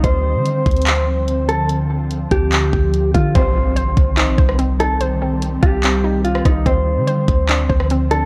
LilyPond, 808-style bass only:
\new Staff \with { instrumentName = "808-style bass" } { \clef bass \time 4/4 \key c \minor \tempo 4 = 145 d,8. d8. d,2~ d,8~ | d,4. d,4 d,4 d8 | c,4. c,8. bes,,16 c,4.~ | c,4. c,2 c,8 |
d,8. d8. d,4 d,4. | }